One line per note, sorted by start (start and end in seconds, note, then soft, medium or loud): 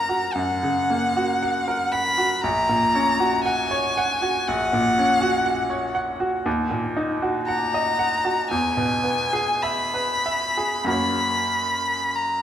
0.00 0.31 F#2 soft
0.00 0.63 C#3 soft
0.00 0.90 A#3 soft
0.00 0.09 F#4 soft
0.00 1.68 A#4 soft
0.00 1.43 F#5 soft
0.00 0.35 A#5 medium
0.09 0.52 F#4 soft
0.33 2.40 F#2 soft
0.33 1.94 F#5 medium
0.63 1.05 C#3 soft
0.90 1.32 A#3 soft
1.17 1.58 F#4 soft
1.43 1.83 F#5 medium
1.68 2.08 A#4 soft
1.93 2.33 F#5 medium
1.93 2.44 B5 medium
2.18 2.43 F#4 soft
2.42 4.44 A#1 medium
2.42 3.43 A#5 medium
2.69 3.10 A#2 soft
2.95 3.35 C#4 medium
3.20 3.61 F#4 medium
3.44 3.86 F#5 medium
3.44 4.50 G#5 medium
3.71 4.12 C#5 medium
3.97 4.38 F#5 medium
4.22 4.63 F#4 soft
4.48 6.42 A#1 medium
4.48 5.96 F#5 medium
4.73 5.13 A#2 medium
4.99 5.37 C#4 medium
5.22 5.61 F#4 medium
5.46 5.85 F#5 medium
5.70 6.10 C#5 soft
5.95 6.35 F#5 medium
6.20 6.46 F#4 medium
6.46 8.47 D#2 medium
6.71 7.12 A#2 soft
6.97 7.38 D#4 medium
7.22 7.63 F#4 medium
7.47 7.89 F#5 medium
7.47 8.46 A#5 medium
7.74 8.15 D#5 medium
7.99 8.40 F#5 medium
8.25 8.51 F#4 soft
8.51 10.86 E2 medium
8.51 9.64 G#5 medium
8.77 9.22 B2 medium
9.04 9.51 B3 soft
9.33 9.82 G#4 soft
9.63 10.13 E5 soft
9.63 10.88 B5 medium
9.94 10.44 B4 soft
10.26 10.77 E5 soft
10.57 10.90 G#4 soft
10.84 12.42 F#2 soft
10.84 12.42 A#3 soft
10.84 12.42 F#4 soft
10.84 12.42 C#5 soft
10.88 12.17 B5 medium
12.15 12.42 A#5 medium